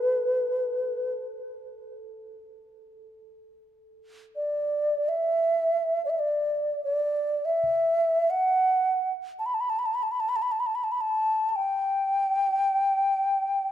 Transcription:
0.00 7.62 A4 soft
0.00 1.13 B4 medium
4.36 5.10 D5 medium
5.09 6.05 E5 medium
6.05 6.11 D5 medium
6.10 6.20 E5 medium
6.19 6.83 D5 medium
6.84 7.47 D5 medium
7.45 8.32 E5 medium
8.30 9.13 F#5 medium
9.39 9.47 A5 medium
9.46 9.56 B5 medium
9.54 9.62 A5 medium
9.60 9.71 B5 medium
9.70 9.80 A5 medium
9.79 9.87 B5 medium
9.86 9.96 A5 medium
9.94 10.04 B5 medium
10.03 10.13 A5 medium
10.12 10.22 B5 medium
10.20 10.31 A5 medium
10.29 10.37 B5 medium
10.36 10.44 A5 medium
10.42 10.53 B5 medium
10.52 10.61 A5 medium
10.60 10.68 B5 medium
10.66 10.77 A5 medium
10.75 10.85 B5 medium
10.84 10.93 A5 medium
10.92 11.02 B5 medium
11.01 11.49 A5 medium
11.49 11.57 A5 soft
11.56 13.72 G5 medium

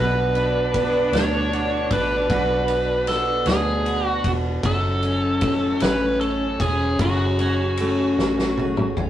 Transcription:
0.00 1.10 B1 loud
0.00 2.29 B2 medium
0.00 4.32 D4 loud
0.00 1.53 F#4 medium
0.00 1.17 B4 loud
0.35 1.13 D4 medium
0.35 ride soft
0.74 3.06 B3 medium
0.74 kick medium
0.74 ride medium
1.12 1.92 D2 medium
1.12 1.91 D4 medium
1.12 1.94 C#5 loud
1.12 snare loud
1.12 ride medium
1.53 2.31 F#4 medium
1.53 ride soft
1.91 2.28 A1 medium
1.91 2.68 D4 medium
1.91 3.08 B4 loud
1.91 kick medium
1.91 ride medium
2.30 3.43 B1 loud
2.30 4.64 B2 medium
2.30 3.85 F#4 medium
2.30 kick medium
2.30 ride medium
2.68 3.46 D4 medium
2.68 ride medium
3.07 4.71 B3 medium
3.07 3.47 A4 medium
3.07 snare soft
3.07 ride medium
3.46 4.20 D2 medium
3.46 4.25 D4 medium
3.46 4.08 G#4 loud
3.46 snare loud
3.46 ride medium
3.86 7.00 F#4 medium
3.86 ride soft
4.08 4.31 F#4 loud
4.24 4.61 E1 medium
4.24 4.72 D4 medium
4.24 kick medium
4.24 ride medium
4.63 5.77 F#1 loud
4.63 6.99 F#2 medium
4.63 7.74 C#4 loud
4.63 5.82 A4 medium
4.63 kick loud
4.63 ride medium
5.03 5.80 C#4 medium
5.03 ride soft
5.41 7.79 A3 medium
5.41 kick loud
5.41 ride medium
5.80 6.56 A1 loud
5.80 6.59 C#4 medium
5.80 6.20 B4 loud
5.80 snare loud
5.80 ride medium
6.21 6.61 A4 medium
6.21 ride soft
6.60 6.97 E1 medium
6.60 7.39 C#4 medium
6.60 6.97 G#4 medium
6.60 kick medium
6.60 ride medium
6.99 8.14 F#1 loud
6.99 9.10 F#2 medium
6.99 8.94 F#4 medium
6.99 8.58 G#4 medium
6.99 kick medium
6.99 ride medium
7.39 8.18 C#4 medium
7.39 ride soft
7.77 9.10 A3 medium
7.77 8.93 C#4 loud
7.77 ride medium
8.18 8.93 A1 medium
8.18 8.96 C#4 medium
8.18 snare medium
8.39 snare medium
8.58 9.10 G#4 medium
8.58 high tom medium
8.77 mid tom medium
8.97 9.10 A1 medium
8.97 9.10 C#4 medium
8.97 mid tom loud

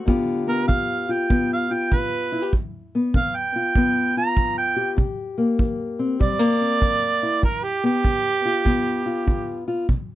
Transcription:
0.05 0.64 G2 medium
0.05 0.66 D3 medium
0.05 0.47 B3 medium
0.05 1.09 F4 medium
0.05 2.32 G4 medium
0.05 kick medium
0.47 1.29 B3 medium
0.47 0.67 A#4 loud
0.68 1.26 D3 medium
0.68 1.13 F5 medium
0.68 kick medium
1.09 1.69 F4 medium
1.09 1.50 G5 medium
1.29 1.87 D3 medium
1.29 2.50 B3 medium
1.29 kick medium
1.53 1.75 F5 medium
1.71 2.50 F4 medium
1.71 1.95 G5 medium
1.92 2.49 D3 medium
1.92 2.52 B4 medium
1.92 kick medium
2.32 2.42 E4 medium
2.42 2.53 G4 soft
2.53 3.10 G2 medium
2.53 kick medium
2.95 3.75 B3 medium
3.14 3.72 D3 medium
3.14 3.37 F5 medium
3.14 kick medium
3.36 4.15 G5 medium
3.56 4.16 F4 medium
3.75 4.33 D3 medium
3.75 4.96 B3 medium
3.75 kick medium
4.17 4.96 F4 medium
4.17 4.57 A#5 medium
4.37 4.94 D3 medium
4.37 kick medium
4.58 4.91 G5 medium
4.76 7.22 G4 medium
4.97 5.55 C3 medium
4.97 kick medium
5.38 6.20 A#3 medium
5.59 6.16 E3 medium
5.59 kick medium
5.99 6.60 C4 medium
6.19 6.77 C3 medium
6.19 6.39 G3 medium
6.19 7.40 D5 loud
6.19 kick medium
6.39 7.42 A#3 soft
6.61 7.41 C4 medium
6.81 7.39 E3 medium
6.81 kick medium
7.23 7.44 E4 medium
7.42 8.00 G2 medium
7.42 7.65 A#4 medium
7.42 kick medium
7.63 7.83 G4 medium
7.84 8.64 B3 medium
7.84 9.65 G4 loud
8.04 8.62 D3 medium
8.04 kick medium
8.45 9.05 F4 medium
8.65 9.22 D3 medium
8.65 9.86 B3 medium
8.65 kick medium
9.06 9.66 F4 medium
9.26 9.84 D3 medium
9.26 kick medium
9.68 9.86 F4 medium
9.89 10.15 C3 medium
9.89 kick medium

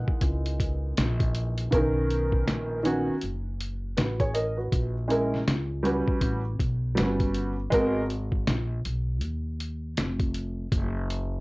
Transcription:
0.00 1.68 E3 medium
0.00 1.68 G#3 medium
0.00 1.69 A#3 medium
0.00 1.69 D#4 medium
0.00 0.19 F#5 loud
0.08 muted upright bass stroke soft
0.08 kick medium
0.21 0.93 C#2 loud
0.21 kick medium
0.21 closed hi-hat medium
0.46 closed hi-hat medium
0.60 kick medium
0.60 closed hi-hat medium
0.97 1.69 A#1 loud
0.97 snare loud
0.97 closed hi-hat loud
1.20 kick loud
1.20 closed hi-hat medium
1.35 closed hi-hat medium
1.58 closed hi-hat medium
1.71 2.44 B1 loud
1.71 1.79 C#3 medium
1.71 2.79 B3 medium
1.71 2.79 C#4 medium
1.71 2.80 A#4 medium
1.71 kick loud
1.71 closed hi-hat medium
1.77 2.81 D#3 medium
2.10 closed hi-hat medium
2.32 kick medium
2.47 3.05 A#1 medium
2.47 snare loud
2.47 closed hi-hat medium
2.83 3.12 D#3 medium
2.83 3.13 B3 medium
2.83 3.14 C#4 medium
2.83 3.14 F#4 medium
2.83 closed hi-hat medium
3.08 muted upright bass stroke soft
3.21 3.94 F#1 medium
3.21 closed hi-hat medium
3.60 closed hi-hat medium
3.97 4.69 A1 loud
3.97 4.19 F#4 soft
3.97 4.19 B4 medium
3.97 snare loud
3.97 closed hi-hat medium
4.20 4.34 G#4 medium
4.20 4.34 C#5 medium
4.20 kick medium
4.20 closed hi-hat soft
4.34 4.56 A#4 medium
4.34 4.56 D#5 medium
4.34 closed hi-hat medium
4.57 4.93 F#4 soft
4.57 4.93 B4 medium
4.72 5.44 A#1 medium
4.72 kick loud
4.72 closed hi-hat medium
5.08 5.37 G#3 medium
5.08 5.38 C#4 medium
5.08 5.38 E4 medium
5.08 5.39 A#4 medium
5.08 closed hi-hat medium
5.34 snare soft
5.48 6.05 C#2 medium
5.48 snare loud
5.48 closed hi-hat medium
5.83 6.39 G3 medium
5.83 6.40 C#4 medium
5.83 6.41 F#4 medium
5.83 6.41 B4 medium
5.83 closed hi-hat medium
6.08 muted upright bass stroke soft
6.08 kick medium
6.21 6.57 A1 loud
6.21 kick medium
6.21 closed hi-hat medium
6.60 6.95 B1 medium
6.60 kick medium
6.60 closed hi-hat medium
6.95 7.69 G1 medium
6.95 7.52 G3 medium
6.95 7.05 C4 medium
6.95 7.53 F#4 medium
6.95 7.54 B4 medium
6.95 snare loud
6.95 closed hi-hat medium
7.03 7.56 C#4 medium
7.20 kick medium
7.20 closed hi-hat soft
7.34 closed hi-hat medium
7.70 8.44 G#1 medium
7.70 8.00 G#3 medium
7.70 8.00 B3 medium
7.70 8.01 F#4 medium
7.70 8.02 A#4 loud
7.70 kick loud
7.70 closed hi-hat medium
8.10 closed hi-hat medium
8.32 kick medium
8.47 8.83 A#1 loud
8.47 snare loud
8.47 closed hi-hat medium
8.85 9.23 B1 medium
8.85 closed hi-hat medium
9.21 9.94 D#2 loud
9.21 closed hi-hat medium
9.60 closed hi-hat medium
9.97 10.69 F1 medium
9.97 snare loud
9.97 closed hi-hat loud
10.20 kick medium
10.20 closed hi-hat soft
10.35 closed hi-hat medium
10.72 11.40 F#1 medium
10.72 kick loud
10.72 closed hi-hat medium
11.10 closed hi-hat medium

